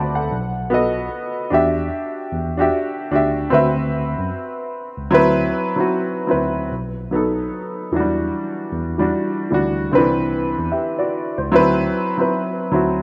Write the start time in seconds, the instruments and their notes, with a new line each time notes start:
Already playing: tine electric piano D2, upright piano C4 F#4 B4 C5 D5 E5 F#5 A5 B5 D6
0.15 upright piano A4 F#5
0.31 tine electric piano B1
0.70 upright piano B3 F#4 A4
0.74 upright piano D#5
1.50 tine electric piano E2, upright piano D4 F#4 G4 E5
2.32 tine electric piano E2
2.57 upright piano D4 F#4 G4
2.61 upright piano E5
3.11 tine electric piano D2, upright piano D4 F#4 G4
3.15 upright piano E5
3.50 tine electric piano D2, upright piano C4 F#4 B4
3.54 upright piano E5
4.18 tine electric piano F#2
4.97 tine electric piano C#2
5.11 tine electric piano D2, upright piano F#3 C4 E4 B4
5.76 upright piano F#3 C4 E4
5.80 upright piano F#4
6.27 upright piano F#3 C4 E4 B4
6.32 tine electric piano D2
6.72 tine electric piano B1
7.11 upright piano F#3 B3 D#4 A4
7.92 tine electric piano E2, upright piano E3 F#3 D4
7.96 upright piano G3 F#4
8.72 tine electric piano E2
8.98 upright piano E3 G3 D4 F#4
9.50 tine electric piano D2, upright piano E3 G3 D4 F#4
9.91 tine electric piano C2, upright piano D3 C4 D4 B4
9.98 upright piano E3
10.58 tine electric piano E2
10.72 upright piano G4 E5
10.98 upright piano F#4 D5
11.38 tine electric piano C#2, upright piano E4 C5
11.51 tine electric piano D2, upright piano F#3 C4 E4 B4
12.18 upright piano F#3 C4 E4 B4
12.72 tine electric piano D2, upright piano F#3 C4 E4 F#4